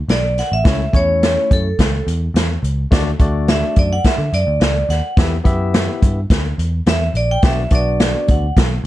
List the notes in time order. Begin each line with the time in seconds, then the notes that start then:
0.09 B1 D5, snare, closed hi-hat
0.38 F#5, snare, closed hi-hat
0.52 A1 E5
0.64 C#2 A3 C#4 E4 C#5, kick, snare, closed hi-hat
0.93 E2 A3 C#4 E4 C#5, kick, closed hi-hat
1.23 snare, closed hi-hat
1.51 F#2 A4, kick, closed hi-hat
1.79 C#2, kick, snare, closed hi-hat
2.07 E2, closed hi-hat
2.34 E2, snare, closed hi-hat
2.63 C#2, closed hi-hat
2.91 D2 A3 D4 F#4 D5, kick, snare, closed hi-hat
3.19 D2 A3 D4 F#4 D5, kick, closed hi-hat
3.48 E5, snare, closed hi-hat
3.76 F#2 D5, kick, closed hi-hat
3.93 F#5
4.04 E5, kick, snare, closed hi-hat
4.18 D3
4.33 F#2 D5, closed hi-hat
4.47 D2
4.60 C#2, snare, closed hi-hat
4.89 D#2 F#5, snare, closed hi-hat
5.17 E2 B3 E4 G4 E5, kick, snare, closed hi-hat
5.44 F#2 B3 E4 G4 E5, kick, closed hi-hat
5.74 snare, closed hi-hat
6.02 G2, kick, closed hi-hat
6.30 D2, kick, snare, closed hi-hat
6.58 E2, closed hi-hat
6.86 E2 E5, snare, closed hi-hat
7.14 A#1 D5, closed hi-hat
7.31 G5
7.42 B1 B3 D4 F#4 D5, kick, snare, closed hi-hat
7.46 E5
7.70 B1 B3 D4 F#4 D5, kick, closed hi-hat
7.75 D5
8.00 snare, closed hi-hat
8.28 D2 F#5, kick, closed hi-hat
8.57 B1, kick, snare, closed hi-hat